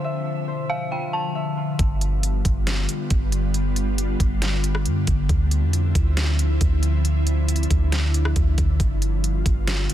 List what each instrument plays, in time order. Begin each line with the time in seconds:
Already playing: ambient pad D3 F3 E5, harp F4 G4 C5
0.04 ambient pad B2, harp E5
0.48 harp C5
0.69 harp E5, synth bell F5
0.91 harp F4, synth bell G5
1.13 synth bell A5
1.35 harp E5
1.57 harp F4
1.79 808-style bass G1, ambient pad D3 G3 B3 F4, kick, closed hi-hat
2.01 closed hi-hat
2.23 closed hi-hat
2.45 808-style bass G1, kick, closed hi-hat
2.67 snare, closed hi-hat
2.89 closed hi-hat
3.10 808-style bass G1, kick, closed hi-hat
3.32 closed hi-hat
3.54 closed hi-hat
3.76 closed hi-hat
3.98 closed hi-hat
4.20 808-style bass G1, kick, closed hi-hat
4.42 snare, closed hi-hat
4.64 closed hi-hat
4.75 cross-stick
4.85 808-style bass G2, closed hi-hat
5.07 808-style bass G1, kick, closed hi-hat
5.29 808-style bass D2, ambient pad F3 C4 E4, kick, closed hi-hat
5.51 closed hi-hat
5.62 808-style bass F2
5.73 closed hi-hat
5.95 808-style bass D2, kick, closed hi-hat
6.17 snare, closed hi-hat
6.39 closed hi-hat
6.61 808-style bass D2, kick, closed hi-hat
6.83 closed hi-hat
7.05 ambient pad D4, closed hi-hat
7.27 closed hi-hat
7.48 closed hi-hat
7.56 closed hi-hat
7.63 closed hi-hat
7.71 808-style bass D2, kick, closed hi-hat
7.92 snare, closed hi-hat
8.14 closed hi-hat
8.25 cross-stick
8.36 808-style bass D2, kick, closed hi-hat
8.58 808-style bass D2, kick, closed hi-hat
8.80 808-style bass G1, ambient pad D3 G3 B3 F4, kick, closed hi-hat
9.02 closed hi-hat
9.24 closed hi-hat
9.46 808-style bass G1, kick, closed hi-hat
9.68 snare, closed hi-hat
9.90 closed hi-hat